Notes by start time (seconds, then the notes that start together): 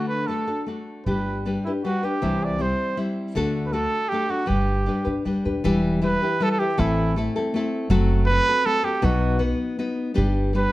Already playing: D3 A3 D4 F#4 A4
0.07 B4
0.27 A3 D4 F#4 A4
0.48 D4 F#4 A4
0.66 A3 D4 F#4 A4
1.06 G1 G3 D4 G4 B4
1.45 G3 D4 G4 B4
1.64 D4 E4 G4 B4
1.84 G3 D4 F#4 G4 B4
2.03 D4 G4 B4
2.22 C2 C3 E3 G3 C4 E4 C5
2.44 D5
2.58 G3 C4 E4 C5
2.97 G3 C4 E4 C5
3.35 D2 D3 A3 D4 F#4 A4
3.66 B4
3.73 A3 D4 F#4 A4
4.09 A3 G4
4.13 D4 F#4 A4
4.29 D4 F#4 A4
4.46 G1 G3 D4 G4 B4
4.86 G3 D4 G4 B4
5.05 G1 D4 G4 B4
5.25 F#1 G3 D4 G4 B4
5.45 E1 D4 G4 B4
5.64 E1 E3 G3 E4 G4 B4
6.02 G3 E4 G4 B4
6.22 E4 G4 B4
6.40 G3 E4 G4 A4 B4
6.51 A4
6.59 E4 G4 B4
6.77 A1 A2 E3 A3 C4 E4 A4
7.16 A3 C4 E4 A4
7.36 A3 C4 E4 A4
7.54 A3 C4 E4 A4
7.90 F#1 F#3 A3 C4 F#4 A4
8.26 A3 B4
8.31 C4 F#4 A4
8.48 C4 F#4 A4
8.66 A3 C4 F#4 A4
8.83 C4 F#4 G4 A4
9.02 B1 B2 F#3 B3 D#4 F#4 B4
9.39 B3 D#4 F#4 B4
9.79 B3 D#4 F#4 B4
10.14 G1 G3 D4 G4 B4
10.53 G3 D4 G4 B4